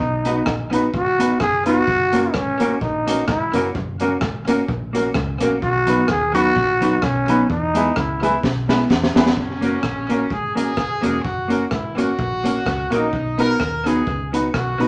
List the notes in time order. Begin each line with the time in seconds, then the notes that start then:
Already playing: D#4
0.00 B1, kick
0.25 B3 D#4 F#4 B4, closed hi-hat
0.46 A#1, kick, cross-stick
0.71 B3 D#4 F#4 B4, closed hi-hat
0.94 G#1 F#4 B4, kick
1.19 B3 D#4 F#4 B4, closed hi-hat
1.40 F#1 G#4, muted clean electric guitar stroke, kick, cross-stick
1.66 B3 D#4 F#4 B4, closed hi-hat
1.87 F#1, kick
2.12 A#3 C#4 F#4 A#4, closed hi-hat
2.34 G#1 C#4, kick, cross-stick
2.59 A#3 C#4 F#4 A#4, closed hi-hat
2.81 A#1 D#4 F#4 A#4, muted clean electric guitar stroke, kick
3.07 A#3 C#4 F#4 A#4, closed hi-hat
3.28 G#1 E4, kick, cross-stick
3.53 F#1 A#3 C#4 F#4 A#4, closed hi-hat
3.75 F#1, kick
4.00 A#3 C#4 F#4 A#4, closed hi-hat
4.21 G#1, kick, cross-stick
4.47 A#3 C#4 F#4 A#4, closed hi-hat
4.68 A#1 F#4 A#4, muted clean electric guitar stroke, kick
4.93 A#3 C#4 F#4 A#4, closed hi-hat
5.14 C#2, muted clean electric guitar stroke, kick, cross-stick
5.41 A#1 A#3 C#4 F#4 A#4, closed hi-hat
5.62 B1 F#4, kick
5.86 F#3 B3 D#4 F#4 B4, closed hi-hat
6.08 D#2 G#4, kick, cross-stick
6.33 F#3 B3 D#4 F#4 B4, closed hi-hat
6.56 A#1 F#4 B4, muted clean electric guitar stroke, kick
6.81 F#3 B3 D#4 F#4 B4, closed hi-hat
7.02 B1 C#4, muted clean electric guitar stroke, kick, cross-stick
7.28 F#3 B3 D#4 F#4 B4, closed hi-hat
7.50 E2 D#4, kick
7.74 G#3 B3 E4 G#4 B4, closed hi-hat
7.96 C#2 E4, kick, cross-stick
8.21 G#3 B3 E4 G#4 B4, closed hi-hat
8.43 B1 G#4 B4, muted clean electric guitar stroke, kick, snare
8.69 G#3 B3 E4 G#4 B4, snare
8.90 E2, muted clean electric guitar stroke, kick, snare
9.04 snare
9.14 E2 G#3 B3 E4 G#4 B4, snare
9.26 snare
9.37 F#1 C#4, kick
9.61 A#3 C#4 F#4 A#4, closed hi-hat
9.83 A#1, kick, cross-stick
10.09 A#3 C#4 F#4 A#4, closed hi-hat
10.30 G#1 F#4 G#4 A#4, muted clean electric guitar stroke, kick
10.55 A#3 C#4 F#4 G#4 A#4, closed hi-hat
10.77 F#1, muted clean electric guitar stroke, kick, cross-stick
11.02 E1 A#3 C#4 F#4 A#4, closed hi-hat
11.24 F#1 F#4, kick
11.48 A#3 C#4 F#4 A#4, closed hi-hat
11.71 G#1 E4, kick, cross-stick
11.97 A#3 C#4 F#4 A#4, closed hi-hat
12.17 A#1 F#4 A#4, muted clean electric guitar stroke, kick
12.44 A#3 C#4 F#4 A#4, closed hi-hat
12.66 C#2, muted clean electric guitar stroke, kick, cross-stick
12.91 A#1 A#3 C#4 D#4 F#4 A#4, closed hi-hat
13.13 B1, kick
13.38 B3 D#4 F#4 A#4 B4, closed hi-hat
13.60 D#2, kick, cross-stick
13.85 B3 D#4 F#4 G#4 B4, closed hi-hat
14.07 C#2 F#4 B4, muted clean electric guitar stroke, kick
14.32 B3 D#4 F#4 B4, closed hi-hat
14.54 B1 F#4, muted clean electric guitar stroke, kick, cross-stick
14.79 A#1 B3 D#4 F#4 B4, open hi-hat